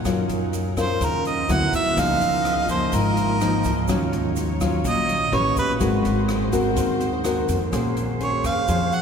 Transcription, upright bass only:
0.05 0.27 F#2 medium
0.29 0.97 F#2 medium
1.01 1.46 D#2 medium
1.49 1.71 D2 loud
1.73 1.95 D2 medium
1.97 2.19 C#2 loud
2.20 2.89 C#2 medium
2.93 3.61 G#1 medium
3.65 3.87 C#2 medium
3.89 4.11 D#2 medium
4.12 4.81 D#2 medium
4.85 5.29 A#1 medium
5.32 5.55 A1 loud
5.57 5.79 A1 medium
5.81 6.03 G#1 loud
6.05 6.73 G#1 medium
6.76 7.44 D#2 medium
7.49 7.71 F2 medium
7.73 8.41 A#1 loud
8.44 8.56 F2 medium
8.68 8.91 F2 medium

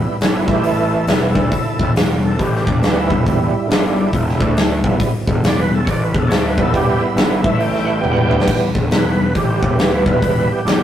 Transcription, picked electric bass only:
0.05 muted picked electric bass stroke soft
0.21 0.46 G1 medium
0.47 1.04 A1 medium
1.07 1.33 E1 loud
1.34 1.50 D2 medium
1.51 muted picked electric bass stroke soft
1.79 1.92 E1 medium
1.93 2.20 E1 medium
2.21 2.37 E1 medium
2.39 2.65 A1 loud
2.67 2.81 E1 medium
2.82 3.08 D2 medium
3.10 3.25 E1 loud
3.26 3.51 E1 medium
3.53 muted picked electric bass stroke soft
3.69 4.10 G1 medium
4.12 4.38 E1 medium
4.40 4.81 D2 medium
4.83 4.99 E1 loud
5.00 muted picked electric bass stroke soft
5.27 5.41 E1 medium
5.41 5.68 E1 medium
5.70 5.86 E1 medium
5.87 6.13 A1 medium
6.14 6.29 E1 loud
6.29 6.55 D2 loud
6.57 6.73 E1 loud
6.74 6.99 E1 medium
7.00 muted picked electric bass stroke soft
7.16 7.42 G1 loud
7.43 8.00 A1 medium
8.03 8.29 E1 medium
8.30 8.46 D2 loud
8.47 muted picked electric bass stroke soft
8.74 8.90 E1 medium
8.91 9.17 E1 medium
9.19 9.34 E1 medium
9.35 9.61 A1 medium
9.62 9.77 E1 medium
9.77 10.04 D2 loud
10.06 10.21 E1 loud
10.22 10.48 E1 medium
10.49 muted picked electric bass stroke soft
10.65 10.83 G1 loud

